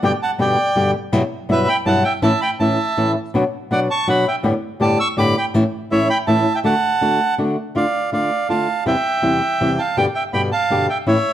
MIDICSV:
0, 0, Header, 1, 3, 480
1, 0, Start_track
1, 0, Key_signature, 2, "major"
1, 0, Tempo, 368324
1, 38, Time_signature, 3, 2, 24, 8
1, 10102, Key_signature, -1, "minor"
1, 14767, End_track
2, 0, Start_track
2, 0, Title_t, "Bandoneon"
2, 0, Program_c, 0, 23
2, 56, Note_on_c, 0, 79, 85
2, 63, Note_on_c, 0, 74, 65
2, 159, Note_off_c, 0, 79, 0
2, 164, Note_off_c, 0, 74, 0
2, 295, Note_on_c, 0, 81, 78
2, 303, Note_on_c, 0, 78, 62
2, 397, Note_off_c, 0, 81, 0
2, 404, Note_off_c, 0, 78, 0
2, 532, Note_on_c, 0, 79, 82
2, 534, Note_on_c, 0, 74, 63
2, 1189, Note_off_c, 0, 79, 0
2, 1190, Note_off_c, 0, 74, 0
2, 1970, Note_on_c, 0, 76, 91
2, 1979, Note_on_c, 0, 71, 67
2, 2182, Note_on_c, 0, 83, 92
2, 2185, Note_off_c, 0, 71, 0
2, 2204, Note_off_c, 0, 76, 0
2, 2204, Note_on_c, 0, 79, 72
2, 2291, Note_off_c, 0, 83, 0
2, 2307, Note_off_c, 0, 79, 0
2, 2426, Note_on_c, 0, 81, 88
2, 2449, Note_on_c, 0, 78, 72
2, 2648, Note_off_c, 0, 81, 0
2, 2660, Note_off_c, 0, 78, 0
2, 2660, Note_on_c, 0, 79, 81
2, 2677, Note_on_c, 0, 76, 68
2, 2769, Note_off_c, 0, 79, 0
2, 2782, Note_off_c, 0, 76, 0
2, 2903, Note_on_c, 0, 81, 94
2, 2926, Note_on_c, 0, 76, 75
2, 3126, Note_off_c, 0, 81, 0
2, 3138, Note_off_c, 0, 76, 0
2, 3143, Note_on_c, 0, 83, 86
2, 3162, Note_on_c, 0, 79, 70
2, 3250, Note_off_c, 0, 83, 0
2, 3266, Note_off_c, 0, 79, 0
2, 3384, Note_on_c, 0, 81, 81
2, 3407, Note_on_c, 0, 76, 64
2, 4054, Note_off_c, 0, 81, 0
2, 4067, Note_off_c, 0, 76, 0
2, 4844, Note_on_c, 0, 78, 83
2, 4848, Note_on_c, 0, 74, 63
2, 4947, Note_off_c, 0, 78, 0
2, 4950, Note_off_c, 0, 74, 0
2, 5089, Note_on_c, 0, 81, 73
2, 5093, Note_on_c, 0, 85, 86
2, 5300, Note_off_c, 0, 81, 0
2, 5325, Note_off_c, 0, 85, 0
2, 5328, Note_on_c, 0, 78, 58
2, 5335, Note_on_c, 0, 83, 78
2, 5539, Note_off_c, 0, 78, 0
2, 5565, Note_off_c, 0, 83, 0
2, 5575, Note_on_c, 0, 76, 54
2, 5580, Note_on_c, 0, 79, 65
2, 5675, Note_off_c, 0, 76, 0
2, 5679, Note_off_c, 0, 79, 0
2, 6273, Note_on_c, 0, 81, 84
2, 6286, Note_on_c, 0, 74, 67
2, 6489, Note_off_c, 0, 81, 0
2, 6496, Note_off_c, 0, 74, 0
2, 6509, Note_on_c, 0, 88, 96
2, 6523, Note_on_c, 0, 85, 70
2, 6614, Note_off_c, 0, 88, 0
2, 6625, Note_off_c, 0, 85, 0
2, 6749, Note_on_c, 0, 86, 83
2, 6770, Note_on_c, 0, 83, 61
2, 6974, Note_off_c, 0, 83, 0
2, 6989, Note_off_c, 0, 86, 0
2, 6994, Note_on_c, 0, 83, 71
2, 7011, Note_on_c, 0, 79, 55
2, 7098, Note_off_c, 0, 83, 0
2, 7111, Note_off_c, 0, 79, 0
2, 7705, Note_on_c, 0, 76, 88
2, 7720, Note_on_c, 0, 73, 69
2, 7923, Note_off_c, 0, 76, 0
2, 7931, Note_off_c, 0, 73, 0
2, 7941, Note_on_c, 0, 83, 92
2, 7952, Note_on_c, 0, 79, 72
2, 8048, Note_off_c, 0, 83, 0
2, 8056, Note_off_c, 0, 79, 0
2, 8172, Note_on_c, 0, 81, 80
2, 8179, Note_on_c, 0, 76, 65
2, 8512, Note_off_c, 0, 76, 0
2, 8536, Note_on_c, 0, 79, 78
2, 8544, Note_off_c, 0, 81, 0
2, 8546, Note_on_c, 0, 76, 58
2, 8590, Note_off_c, 0, 79, 0
2, 8598, Note_off_c, 0, 76, 0
2, 8666, Note_on_c, 0, 81, 84
2, 8676, Note_on_c, 0, 78, 69
2, 9572, Note_off_c, 0, 81, 0
2, 9577, Note_off_c, 0, 78, 0
2, 10119, Note_on_c, 0, 77, 70
2, 10120, Note_on_c, 0, 74, 51
2, 10559, Note_off_c, 0, 77, 0
2, 10560, Note_off_c, 0, 74, 0
2, 10593, Note_on_c, 0, 77, 67
2, 10605, Note_on_c, 0, 74, 53
2, 11043, Note_off_c, 0, 74, 0
2, 11061, Note_off_c, 0, 77, 0
2, 11071, Note_on_c, 0, 81, 65
2, 11080, Note_on_c, 0, 77, 52
2, 11515, Note_off_c, 0, 81, 0
2, 11520, Note_off_c, 0, 77, 0
2, 11556, Note_on_c, 0, 79, 81
2, 11567, Note_on_c, 0, 76, 63
2, 12708, Note_off_c, 0, 76, 0
2, 12755, Note_on_c, 0, 81, 70
2, 12769, Note_on_c, 0, 77, 52
2, 12790, Note_off_c, 0, 79, 0
2, 12983, Note_off_c, 0, 77, 0
2, 12993, Note_on_c, 0, 79, 79
2, 12999, Note_off_c, 0, 81, 0
2, 13006, Note_on_c, 0, 74, 59
2, 13100, Note_off_c, 0, 79, 0
2, 13110, Note_off_c, 0, 74, 0
2, 13223, Note_on_c, 0, 79, 68
2, 13237, Note_on_c, 0, 76, 54
2, 13333, Note_off_c, 0, 79, 0
2, 13343, Note_off_c, 0, 76, 0
2, 13463, Note_on_c, 0, 83, 76
2, 13474, Note_on_c, 0, 79, 63
2, 13573, Note_off_c, 0, 83, 0
2, 13581, Note_off_c, 0, 79, 0
2, 13710, Note_on_c, 0, 81, 86
2, 13723, Note_on_c, 0, 77, 59
2, 14158, Note_off_c, 0, 81, 0
2, 14165, Note_off_c, 0, 77, 0
2, 14200, Note_on_c, 0, 79, 71
2, 14204, Note_on_c, 0, 76, 58
2, 14306, Note_off_c, 0, 79, 0
2, 14309, Note_off_c, 0, 76, 0
2, 14433, Note_on_c, 0, 76, 84
2, 14436, Note_on_c, 0, 73, 62
2, 14767, Note_off_c, 0, 73, 0
2, 14767, Note_off_c, 0, 76, 0
2, 14767, End_track
3, 0, Start_track
3, 0, Title_t, "Nylon-string guitar"
3, 0, Program_c, 1, 24
3, 32, Note_on_c, 1, 43, 72
3, 39, Note_on_c, 1, 47, 75
3, 39, Note_on_c, 1, 50, 71
3, 39, Note_on_c, 1, 55, 78
3, 45, Note_on_c, 1, 59, 73
3, 47, Note_on_c, 1, 67, 82
3, 151, Note_off_c, 1, 43, 0
3, 154, Note_off_c, 1, 55, 0
3, 155, Note_off_c, 1, 47, 0
3, 155, Note_off_c, 1, 50, 0
3, 158, Note_off_c, 1, 59, 0
3, 158, Note_off_c, 1, 67, 0
3, 502, Note_on_c, 1, 43, 51
3, 504, Note_on_c, 1, 47, 60
3, 510, Note_on_c, 1, 55, 64
3, 511, Note_on_c, 1, 50, 60
3, 515, Note_on_c, 1, 59, 58
3, 517, Note_on_c, 1, 67, 61
3, 728, Note_off_c, 1, 43, 0
3, 729, Note_off_c, 1, 47, 0
3, 732, Note_off_c, 1, 55, 0
3, 733, Note_off_c, 1, 50, 0
3, 735, Note_off_c, 1, 59, 0
3, 735, Note_off_c, 1, 67, 0
3, 986, Note_on_c, 1, 47, 63
3, 987, Note_on_c, 1, 43, 59
3, 989, Note_on_c, 1, 50, 62
3, 994, Note_on_c, 1, 55, 65
3, 995, Note_on_c, 1, 59, 61
3, 997, Note_on_c, 1, 67, 76
3, 1208, Note_off_c, 1, 47, 0
3, 1209, Note_off_c, 1, 43, 0
3, 1210, Note_off_c, 1, 50, 0
3, 1212, Note_off_c, 1, 55, 0
3, 1213, Note_off_c, 1, 59, 0
3, 1214, Note_off_c, 1, 67, 0
3, 1464, Note_on_c, 1, 43, 72
3, 1468, Note_on_c, 1, 47, 81
3, 1469, Note_on_c, 1, 54, 85
3, 1472, Note_on_c, 1, 59, 84
3, 1472, Note_on_c, 1, 64, 83
3, 1473, Note_on_c, 1, 55, 87
3, 1582, Note_off_c, 1, 43, 0
3, 1584, Note_off_c, 1, 47, 0
3, 1585, Note_off_c, 1, 54, 0
3, 1586, Note_off_c, 1, 59, 0
3, 1586, Note_off_c, 1, 64, 0
3, 1587, Note_off_c, 1, 55, 0
3, 1939, Note_on_c, 1, 43, 54
3, 1942, Note_on_c, 1, 47, 67
3, 1944, Note_on_c, 1, 54, 59
3, 1947, Note_on_c, 1, 55, 52
3, 1948, Note_on_c, 1, 59, 59
3, 1948, Note_on_c, 1, 64, 62
3, 2163, Note_off_c, 1, 43, 0
3, 2164, Note_off_c, 1, 47, 0
3, 2165, Note_off_c, 1, 54, 0
3, 2167, Note_off_c, 1, 55, 0
3, 2167, Note_off_c, 1, 59, 0
3, 2168, Note_off_c, 1, 64, 0
3, 2417, Note_on_c, 1, 43, 63
3, 2420, Note_on_c, 1, 47, 63
3, 2424, Note_on_c, 1, 55, 67
3, 2425, Note_on_c, 1, 54, 69
3, 2428, Note_on_c, 1, 59, 63
3, 2431, Note_on_c, 1, 64, 71
3, 2641, Note_off_c, 1, 43, 0
3, 2643, Note_off_c, 1, 47, 0
3, 2645, Note_off_c, 1, 55, 0
3, 2646, Note_off_c, 1, 54, 0
3, 2647, Note_off_c, 1, 59, 0
3, 2648, Note_off_c, 1, 64, 0
3, 2896, Note_on_c, 1, 45, 71
3, 2896, Note_on_c, 1, 52, 75
3, 2898, Note_on_c, 1, 57, 72
3, 2899, Note_on_c, 1, 61, 86
3, 2901, Note_on_c, 1, 64, 84
3, 3016, Note_off_c, 1, 45, 0
3, 3016, Note_off_c, 1, 52, 0
3, 3017, Note_off_c, 1, 57, 0
3, 3018, Note_off_c, 1, 61, 0
3, 3019, Note_off_c, 1, 64, 0
3, 3382, Note_on_c, 1, 45, 60
3, 3392, Note_on_c, 1, 52, 52
3, 3393, Note_on_c, 1, 57, 61
3, 3394, Note_on_c, 1, 61, 63
3, 3396, Note_on_c, 1, 64, 60
3, 3604, Note_off_c, 1, 45, 0
3, 3609, Note_off_c, 1, 52, 0
3, 3609, Note_off_c, 1, 57, 0
3, 3610, Note_off_c, 1, 61, 0
3, 3611, Note_off_c, 1, 64, 0
3, 3875, Note_on_c, 1, 45, 54
3, 3878, Note_on_c, 1, 52, 61
3, 3879, Note_on_c, 1, 57, 61
3, 3882, Note_on_c, 1, 61, 66
3, 3883, Note_on_c, 1, 64, 69
3, 4091, Note_off_c, 1, 45, 0
3, 4093, Note_off_c, 1, 52, 0
3, 4093, Note_off_c, 1, 57, 0
3, 4095, Note_off_c, 1, 61, 0
3, 4095, Note_off_c, 1, 64, 0
3, 4353, Note_on_c, 1, 47, 71
3, 4363, Note_on_c, 1, 59, 77
3, 4365, Note_on_c, 1, 54, 72
3, 4365, Note_on_c, 1, 62, 84
3, 4370, Note_on_c, 1, 66, 83
3, 4466, Note_off_c, 1, 47, 0
3, 4471, Note_off_c, 1, 59, 0
3, 4472, Note_off_c, 1, 54, 0
3, 4472, Note_off_c, 1, 62, 0
3, 4474, Note_off_c, 1, 66, 0
3, 4831, Note_on_c, 1, 47, 53
3, 4833, Note_on_c, 1, 54, 56
3, 4838, Note_on_c, 1, 59, 59
3, 4841, Note_on_c, 1, 62, 60
3, 4844, Note_on_c, 1, 66, 60
3, 5049, Note_off_c, 1, 47, 0
3, 5050, Note_off_c, 1, 54, 0
3, 5052, Note_off_c, 1, 59, 0
3, 5054, Note_off_c, 1, 62, 0
3, 5055, Note_off_c, 1, 66, 0
3, 5311, Note_on_c, 1, 47, 67
3, 5311, Note_on_c, 1, 54, 70
3, 5318, Note_on_c, 1, 62, 67
3, 5320, Note_on_c, 1, 59, 61
3, 5326, Note_on_c, 1, 66, 65
3, 5528, Note_off_c, 1, 47, 0
3, 5528, Note_off_c, 1, 54, 0
3, 5532, Note_off_c, 1, 59, 0
3, 5532, Note_off_c, 1, 62, 0
3, 5535, Note_off_c, 1, 66, 0
3, 5775, Note_on_c, 1, 43, 77
3, 5783, Note_on_c, 1, 45, 73
3, 5785, Note_on_c, 1, 50, 75
3, 5785, Note_on_c, 1, 55, 78
3, 5789, Note_on_c, 1, 59, 82
3, 5789, Note_on_c, 1, 67, 76
3, 5895, Note_off_c, 1, 43, 0
3, 5899, Note_off_c, 1, 45, 0
3, 5900, Note_off_c, 1, 50, 0
3, 5900, Note_off_c, 1, 55, 0
3, 5902, Note_off_c, 1, 59, 0
3, 5903, Note_off_c, 1, 67, 0
3, 6251, Note_on_c, 1, 43, 57
3, 6257, Note_on_c, 1, 45, 60
3, 6261, Note_on_c, 1, 50, 57
3, 6261, Note_on_c, 1, 55, 60
3, 6264, Note_on_c, 1, 59, 62
3, 6264, Note_on_c, 1, 67, 60
3, 6476, Note_off_c, 1, 43, 0
3, 6479, Note_off_c, 1, 45, 0
3, 6481, Note_off_c, 1, 50, 0
3, 6481, Note_off_c, 1, 55, 0
3, 6483, Note_off_c, 1, 59, 0
3, 6483, Note_off_c, 1, 67, 0
3, 6733, Note_on_c, 1, 43, 60
3, 6740, Note_on_c, 1, 45, 62
3, 6742, Note_on_c, 1, 50, 61
3, 6743, Note_on_c, 1, 55, 63
3, 6747, Note_on_c, 1, 59, 69
3, 6751, Note_on_c, 1, 67, 75
3, 6956, Note_off_c, 1, 43, 0
3, 6960, Note_off_c, 1, 45, 0
3, 6961, Note_off_c, 1, 50, 0
3, 6961, Note_off_c, 1, 55, 0
3, 6963, Note_off_c, 1, 59, 0
3, 6965, Note_off_c, 1, 67, 0
3, 7220, Note_on_c, 1, 45, 71
3, 7224, Note_on_c, 1, 52, 80
3, 7225, Note_on_c, 1, 57, 77
3, 7231, Note_on_c, 1, 61, 79
3, 7234, Note_on_c, 1, 64, 82
3, 7335, Note_off_c, 1, 45, 0
3, 7337, Note_off_c, 1, 52, 0
3, 7338, Note_off_c, 1, 57, 0
3, 7340, Note_off_c, 1, 61, 0
3, 7342, Note_off_c, 1, 64, 0
3, 7702, Note_on_c, 1, 45, 58
3, 7707, Note_on_c, 1, 57, 60
3, 7711, Note_on_c, 1, 52, 51
3, 7713, Note_on_c, 1, 64, 60
3, 7716, Note_on_c, 1, 61, 64
3, 7920, Note_off_c, 1, 45, 0
3, 7923, Note_off_c, 1, 57, 0
3, 7925, Note_off_c, 1, 52, 0
3, 7926, Note_off_c, 1, 64, 0
3, 7927, Note_off_c, 1, 61, 0
3, 8172, Note_on_c, 1, 45, 66
3, 8176, Note_on_c, 1, 52, 62
3, 8183, Note_on_c, 1, 57, 66
3, 8186, Note_on_c, 1, 61, 65
3, 8189, Note_on_c, 1, 64, 69
3, 8395, Note_off_c, 1, 45, 0
3, 8397, Note_off_c, 1, 52, 0
3, 8400, Note_off_c, 1, 57, 0
3, 8402, Note_off_c, 1, 61, 0
3, 8404, Note_off_c, 1, 64, 0
3, 8652, Note_on_c, 1, 50, 76
3, 8657, Note_on_c, 1, 57, 82
3, 8664, Note_on_c, 1, 62, 76
3, 8664, Note_on_c, 1, 66, 82
3, 8771, Note_off_c, 1, 50, 0
3, 8774, Note_off_c, 1, 57, 0
3, 8777, Note_off_c, 1, 62, 0
3, 8777, Note_off_c, 1, 66, 0
3, 9137, Note_on_c, 1, 50, 58
3, 9145, Note_on_c, 1, 57, 54
3, 9146, Note_on_c, 1, 62, 59
3, 9151, Note_on_c, 1, 66, 56
3, 9359, Note_off_c, 1, 50, 0
3, 9363, Note_off_c, 1, 57, 0
3, 9364, Note_off_c, 1, 62, 0
3, 9366, Note_off_c, 1, 66, 0
3, 9622, Note_on_c, 1, 50, 64
3, 9622, Note_on_c, 1, 57, 65
3, 9628, Note_on_c, 1, 62, 64
3, 9632, Note_on_c, 1, 66, 62
3, 9844, Note_off_c, 1, 50, 0
3, 9844, Note_off_c, 1, 57, 0
3, 9846, Note_off_c, 1, 62, 0
3, 9849, Note_off_c, 1, 66, 0
3, 10098, Note_on_c, 1, 50, 59
3, 10103, Note_on_c, 1, 57, 60
3, 10107, Note_on_c, 1, 62, 66
3, 10110, Note_on_c, 1, 65, 62
3, 10218, Note_off_c, 1, 50, 0
3, 10220, Note_off_c, 1, 57, 0
3, 10222, Note_off_c, 1, 62, 0
3, 10224, Note_off_c, 1, 65, 0
3, 10582, Note_on_c, 1, 50, 46
3, 10586, Note_on_c, 1, 57, 49
3, 10592, Note_on_c, 1, 65, 54
3, 10595, Note_on_c, 1, 62, 54
3, 10805, Note_off_c, 1, 50, 0
3, 10807, Note_off_c, 1, 57, 0
3, 10810, Note_off_c, 1, 65, 0
3, 10812, Note_off_c, 1, 62, 0
3, 11061, Note_on_c, 1, 50, 48
3, 11067, Note_on_c, 1, 57, 51
3, 11073, Note_on_c, 1, 62, 57
3, 11077, Note_on_c, 1, 65, 59
3, 11285, Note_off_c, 1, 50, 0
3, 11288, Note_off_c, 1, 57, 0
3, 11291, Note_off_c, 1, 62, 0
3, 11293, Note_off_c, 1, 65, 0
3, 11542, Note_on_c, 1, 40, 63
3, 11546, Note_on_c, 1, 48, 69
3, 11547, Note_on_c, 1, 52, 74
3, 11549, Note_on_c, 1, 55, 58
3, 11550, Note_on_c, 1, 60, 66
3, 11556, Note_on_c, 1, 64, 75
3, 11662, Note_off_c, 1, 40, 0
3, 11664, Note_off_c, 1, 48, 0
3, 11664, Note_off_c, 1, 52, 0
3, 11665, Note_off_c, 1, 55, 0
3, 11666, Note_off_c, 1, 60, 0
3, 11669, Note_off_c, 1, 64, 0
3, 12019, Note_on_c, 1, 40, 51
3, 12021, Note_on_c, 1, 48, 46
3, 12024, Note_on_c, 1, 55, 48
3, 12027, Note_on_c, 1, 52, 48
3, 12030, Note_on_c, 1, 64, 48
3, 12031, Note_on_c, 1, 60, 56
3, 12246, Note_off_c, 1, 40, 0
3, 12246, Note_off_c, 1, 48, 0
3, 12248, Note_off_c, 1, 55, 0
3, 12249, Note_off_c, 1, 52, 0
3, 12251, Note_off_c, 1, 64, 0
3, 12252, Note_off_c, 1, 60, 0
3, 12515, Note_on_c, 1, 40, 49
3, 12522, Note_on_c, 1, 48, 53
3, 12522, Note_on_c, 1, 55, 55
3, 12524, Note_on_c, 1, 52, 59
3, 12526, Note_on_c, 1, 64, 63
3, 12528, Note_on_c, 1, 60, 56
3, 12734, Note_off_c, 1, 40, 0
3, 12737, Note_off_c, 1, 48, 0
3, 12737, Note_off_c, 1, 55, 0
3, 12738, Note_off_c, 1, 52, 0
3, 12739, Note_off_c, 1, 64, 0
3, 12740, Note_off_c, 1, 60, 0
3, 12993, Note_on_c, 1, 47, 70
3, 12994, Note_on_c, 1, 43, 69
3, 12996, Note_on_c, 1, 50, 59
3, 12998, Note_on_c, 1, 55, 67
3, 13000, Note_on_c, 1, 59, 73
3, 13003, Note_on_c, 1, 67, 80
3, 13109, Note_off_c, 1, 43, 0
3, 13109, Note_off_c, 1, 47, 0
3, 13110, Note_off_c, 1, 50, 0
3, 13111, Note_off_c, 1, 55, 0
3, 13112, Note_off_c, 1, 59, 0
3, 13114, Note_off_c, 1, 67, 0
3, 13461, Note_on_c, 1, 43, 52
3, 13464, Note_on_c, 1, 50, 49
3, 13467, Note_on_c, 1, 59, 58
3, 13468, Note_on_c, 1, 47, 53
3, 13472, Note_on_c, 1, 55, 49
3, 13473, Note_on_c, 1, 67, 58
3, 13688, Note_off_c, 1, 43, 0
3, 13689, Note_off_c, 1, 50, 0
3, 13690, Note_off_c, 1, 59, 0
3, 13691, Note_off_c, 1, 47, 0
3, 13693, Note_off_c, 1, 55, 0
3, 13693, Note_off_c, 1, 67, 0
3, 13947, Note_on_c, 1, 43, 52
3, 13948, Note_on_c, 1, 47, 52
3, 13955, Note_on_c, 1, 50, 54
3, 13956, Note_on_c, 1, 59, 60
3, 13957, Note_on_c, 1, 55, 57
3, 13960, Note_on_c, 1, 67, 61
3, 14171, Note_off_c, 1, 43, 0
3, 14172, Note_off_c, 1, 47, 0
3, 14176, Note_off_c, 1, 50, 0
3, 14176, Note_off_c, 1, 55, 0
3, 14176, Note_off_c, 1, 59, 0
3, 14178, Note_off_c, 1, 67, 0
3, 14421, Note_on_c, 1, 45, 69
3, 14422, Note_on_c, 1, 52, 64
3, 14423, Note_on_c, 1, 57, 69
3, 14426, Note_on_c, 1, 61, 70
3, 14431, Note_on_c, 1, 64, 74
3, 14544, Note_off_c, 1, 45, 0
3, 14545, Note_off_c, 1, 52, 0
3, 14545, Note_off_c, 1, 57, 0
3, 14547, Note_off_c, 1, 61, 0
3, 14549, Note_off_c, 1, 64, 0
3, 14767, End_track
0, 0, End_of_file